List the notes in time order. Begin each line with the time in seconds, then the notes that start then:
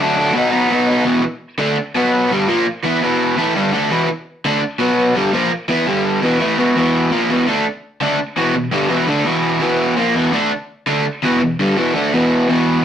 0.00 D3 F#3 A3 D4
0.16 A3 D4
0.20 F#3
0.34 B2 F#3 B3
0.38 D#4
0.51 F#3 B3 D#4
0.56 B2
0.69 B2 F#3 B3
0.74 D#4
0.87 B3 D#4
0.91 F#3
1.04 E2 B2 E3
1.23 muted overdriven electric guitar stroke
1.58 D3 A3 D4
1.77 muted overdriven electric guitar stroke
1.95 B2 F#3 B3
2.31 G2 D3 G3
2.48 A#2 F3 A#3
2.67 muted overdriven electric guitar stroke
2.84 E3 B3 E4
3.02 E2 B2 E3
3.37 A2 E3 A3
3.55 G2 D3 G3
3.72 D3 A3 D4
3.90 E2 B2 E3
4.09 muted overdriven electric guitar stroke
4.45 D3 A3 D4
4.62 muted overdriven electric guitar stroke
4.79 B2 F#3 B3
5.15 G2 D3 G3
5.33 A#2 F3 A#3
5.50 muted overdriven electric guitar stroke
5.68 E3 B3 E4
5.86 G2 D3 G3
6.22 E2 B2 E3
6.39 A2 E3 A3
6.58 E2 B2 E3
6.76 E2 B2 E3
7.11 A#2 F3 A#3
7.28 E2 B2 E3
7.46 D3 A3 D4
7.66 muted overdriven electric guitar stroke
8.01 D3 A3 D4
8.19 muted overdriven electric guitar stroke
8.36 E2 B2 E3
8.56 E2 B2
8.72 G2 D3 G3
8.88 E2 B2 E3
9.07 D3 A3 D4
9.24 E2 B2 E3
9.60 E2 B2 E3
9.96 A#2 F3 A#3
10.14 E2 B2 E3
10.32 D3 A3 D4
10.51 muted overdriven electric guitar stroke
10.87 D3 A3 D4
11.06 muted overdriven electric guitar stroke
11.23 E2 B2 E3
11.41 E2 B2
11.59 G2 D3 G3
11.77 E2 B2 E3
11.94 D3 A3 D4
12.13 E2 B2 E3
12.48 E2 B2 E3